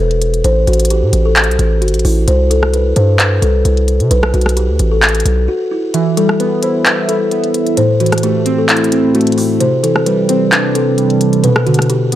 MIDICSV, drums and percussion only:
0, 0, Header, 1, 2, 480
1, 0, Start_track
1, 0, Tempo, 458015
1, 466, Time_signature, 4, 2, 24, 8
1, 12737, End_track
2, 0, Start_track
2, 0, Title_t, "Drums"
2, 113, Note_on_c, 9, 42, 36
2, 218, Note_off_c, 9, 42, 0
2, 226, Note_on_c, 9, 42, 68
2, 331, Note_off_c, 9, 42, 0
2, 353, Note_on_c, 9, 42, 39
2, 458, Note_off_c, 9, 42, 0
2, 466, Note_on_c, 9, 42, 82
2, 570, Note_off_c, 9, 42, 0
2, 706, Note_on_c, 9, 42, 44
2, 769, Note_off_c, 9, 42, 0
2, 769, Note_on_c, 9, 42, 54
2, 833, Note_off_c, 9, 42, 0
2, 833, Note_on_c, 9, 42, 64
2, 890, Note_off_c, 9, 42, 0
2, 890, Note_on_c, 9, 42, 73
2, 947, Note_off_c, 9, 42, 0
2, 947, Note_on_c, 9, 42, 69
2, 1052, Note_off_c, 9, 42, 0
2, 1184, Note_on_c, 9, 42, 77
2, 1289, Note_off_c, 9, 42, 0
2, 1426, Note_on_c, 9, 39, 114
2, 1426, Note_on_c, 9, 42, 60
2, 1506, Note_off_c, 9, 42, 0
2, 1506, Note_on_c, 9, 42, 61
2, 1531, Note_off_c, 9, 39, 0
2, 1586, Note_off_c, 9, 42, 0
2, 1586, Note_on_c, 9, 42, 61
2, 1668, Note_off_c, 9, 42, 0
2, 1668, Note_on_c, 9, 42, 84
2, 1773, Note_off_c, 9, 42, 0
2, 1906, Note_on_c, 9, 42, 53
2, 1970, Note_off_c, 9, 42, 0
2, 1970, Note_on_c, 9, 42, 52
2, 2033, Note_off_c, 9, 42, 0
2, 2033, Note_on_c, 9, 42, 52
2, 2090, Note_off_c, 9, 42, 0
2, 2090, Note_on_c, 9, 42, 49
2, 2146, Note_on_c, 9, 46, 72
2, 2194, Note_off_c, 9, 42, 0
2, 2251, Note_off_c, 9, 46, 0
2, 2386, Note_on_c, 9, 42, 83
2, 2491, Note_off_c, 9, 42, 0
2, 2629, Note_on_c, 9, 42, 69
2, 2734, Note_off_c, 9, 42, 0
2, 2754, Note_on_c, 9, 37, 72
2, 2858, Note_off_c, 9, 37, 0
2, 2867, Note_on_c, 9, 42, 64
2, 2972, Note_off_c, 9, 42, 0
2, 3104, Note_on_c, 9, 42, 76
2, 3208, Note_off_c, 9, 42, 0
2, 3346, Note_on_c, 9, 39, 114
2, 3350, Note_on_c, 9, 42, 75
2, 3451, Note_off_c, 9, 39, 0
2, 3455, Note_off_c, 9, 42, 0
2, 3588, Note_on_c, 9, 42, 78
2, 3693, Note_off_c, 9, 42, 0
2, 3826, Note_on_c, 9, 42, 64
2, 3931, Note_off_c, 9, 42, 0
2, 3954, Note_on_c, 9, 42, 36
2, 4058, Note_off_c, 9, 42, 0
2, 4066, Note_on_c, 9, 42, 67
2, 4171, Note_off_c, 9, 42, 0
2, 4193, Note_on_c, 9, 42, 39
2, 4298, Note_off_c, 9, 42, 0
2, 4306, Note_on_c, 9, 42, 84
2, 4411, Note_off_c, 9, 42, 0
2, 4433, Note_on_c, 9, 37, 106
2, 4538, Note_off_c, 9, 37, 0
2, 4546, Note_on_c, 9, 42, 43
2, 4626, Note_off_c, 9, 42, 0
2, 4626, Note_on_c, 9, 42, 59
2, 4674, Note_on_c, 9, 37, 69
2, 4706, Note_off_c, 9, 42, 0
2, 4706, Note_on_c, 9, 42, 72
2, 4778, Note_off_c, 9, 37, 0
2, 4787, Note_off_c, 9, 42, 0
2, 4787, Note_on_c, 9, 42, 68
2, 4892, Note_off_c, 9, 42, 0
2, 5024, Note_on_c, 9, 42, 73
2, 5128, Note_off_c, 9, 42, 0
2, 5266, Note_on_c, 9, 39, 118
2, 5266, Note_on_c, 9, 42, 44
2, 5330, Note_off_c, 9, 42, 0
2, 5330, Note_on_c, 9, 42, 57
2, 5371, Note_off_c, 9, 39, 0
2, 5393, Note_off_c, 9, 42, 0
2, 5393, Note_on_c, 9, 42, 63
2, 5450, Note_off_c, 9, 42, 0
2, 5450, Note_on_c, 9, 42, 74
2, 5508, Note_off_c, 9, 42, 0
2, 5508, Note_on_c, 9, 42, 81
2, 5613, Note_off_c, 9, 42, 0
2, 6226, Note_on_c, 9, 42, 87
2, 6331, Note_off_c, 9, 42, 0
2, 6469, Note_on_c, 9, 42, 72
2, 6574, Note_off_c, 9, 42, 0
2, 6593, Note_on_c, 9, 37, 71
2, 6698, Note_off_c, 9, 37, 0
2, 6707, Note_on_c, 9, 42, 65
2, 6812, Note_off_c, 9, 42, 0
2, 6944, Note_on_c, 9, 42, 74
2, 7048, Note_off_c, 9, 42, 0
2, 7186, Note_on_c, 9, 39, 118
2, 7190, Note_on_c, 9, 42, 71
2, 7290, Note_off_c, 9, 39, 0
2, 7295, Note_off_c, 9, 42, 0
2, 7428, Note_on_c, 9, 42, 75
2, 7533, Note_off_c, 9, 42, 0
2, 7666, Note_on_c, 9, 42, 64
2, 7771, Note_off_c, 9, 42, 0
2, 7793, Note_on_c, 9, 42, 36
2, 7898, Note_off_c, 9, 42, 0
2, 7906, Note_on_c, 9, 42, 67
2, 8010, Note_off_c, 9, 42, 0
2, 8033, Note_on_c, 9, 42, 40
2, 8138, Note_off_c, 9, 42, 0
2, 8146, Note_on_c, 9, 42, 86
2, 8250, Note_off_c, 9, 42, 0
2, 8387, Note_on_c, 9, 42, 44
2, 8450, Note_off_c, 9, 42, 0
2, 8450, Note_on_c, 9, 42, 53
2, 8514, Note_off_c, 9, 42, 0
2, 8514, Note_on_c, 9, 37, 73
2, 8514, Note_on_c, 9, 42, 63
2, 8570, Note_off_c, 9, 42, 0
2, 8570, Note_on_c, 9, 42, 75
2, 8619, Note_off_c, 9, 37, 0
2, 8627, Note_off_c, 9, 42, 0
2, 8627, Note_on_c, 9, 42, 67
2, 8732, Note_off_c, 9, 42, 0
2, 8864, Note_on_c, 9, 42, 75
2, 8969, Note_off_c, 9, 42, 0
2, 9106, Note_on_c, 9, 39, 117
2, 9106, Note_on_c, 9, 42, 62
2, 9187, Note_off_c, 9, 42, 0
2, 9187, Note_on_c, 9, 42, 63
2, 9211, Note_off_c, 9, 39, 0
2, 9266, Note_off_c, 9, 42, 0
2, 9266, Note_on_c, 9, 42, 60
2, 9349, Note_off_c, 9, 42, 0
2, 9349, Note_on_c, 9, 42, 81
2, 9453, Note_off_c, 9, 42, 0
2, 9586, Note_on_c, 9, 42, 51
2, 9650, Note_off_c, 9, 42, 0
2, 9650, Note_on_c, 9, 42, 51
2, 9714, Note_off_c, 9, 42, 0
2, 9714, Note_on_c, 9, 42, 51
2, 9770, Note_off_c, 9, 42, 0
2, 9770, Note_on_c, 9, 42, 52
2, 9827, Note_on_c, 9, 46, 71
2, 9875, Note_off_c, 9, 42, 0
2, 9932, Note_off_c, 9, 46, 0
2, 10066, Note_on_c, 9, 42, 85
2, 10171, Note_off_c, 9, 42, 0
2, 10310, Note_on_c, 9, 42, 72
2, 10415, Note_off_c, 9, 42, 0
2, 10434, Note_on_c, 9, 37, 70
2, 10539, Note_off_c, 9, 37, 0
2, 10547, Note_on_c, 9, 42, 68
2, 10652, Note_off_c, 9, 42, 0
2, 10784, Note_on_c, 9, 42, 76
2, 10889, Note_off_c, 9, 42, 0
2, 11026, Note_on_c, 9, 39, 124
2, 11031, Note_on_c, 9, 42, 70
2, 11131, Note_off_c, 9, 39, 0
2, 11136, Note_off_c, 9, 42, 0
2, 11269, Note_on_c, 9, 42, 79
2, 11374, Note_off_c, 9, 42, 0
2, 11506, Note_on_c, 9, 42, 62
2, 11611, Note_off_c, 9, 42, 0
2, 11634, Note_on_c, 9, 42, 36
2, 11739, Note_off_c, 9, 42, 0
2, 11746, Note_on_c, 9, 42, 70
2, 11851, Note_off_c, 9, 42, 0
2, 11873, Note_on_c, 9, 42, 41
2, 11978, Note_off_c, 9, 42, 0
2, 11986, Note_on_c, 9, 42, 84
2, 12090, Note_off_c, 9, 42, 0
2, 12113, Note_on_c, 9, 37, 103
2, 12218, Note_off_c, 9, 37, 0
2, 12226, Note_on_c, 9, 42, 43
2, 12306, Note_off_c, 9, 42, 0
2, 12306, Note_on_c, 9, 42, 59
2, 12354, Note_on_c, 9, 37, 73
2, 12386, Note_off_c, 9, 42, 0
2, 12386, Note_on_c, 9, 42, 75
2, 12458, Note_off_c, 9, 37, 0
2, 12467, Note_off_c, 9, 42, 0
2, 12467, Note_on_c, 9, 42, 68
2, 12572, Note_off_c, 9, 42, 0
2, 12704, Note_on_c, 9, 42, 74
2, 12737, Note_off_c, 9, 42, 0
2, 12737, End_track
0, 0, End_of_file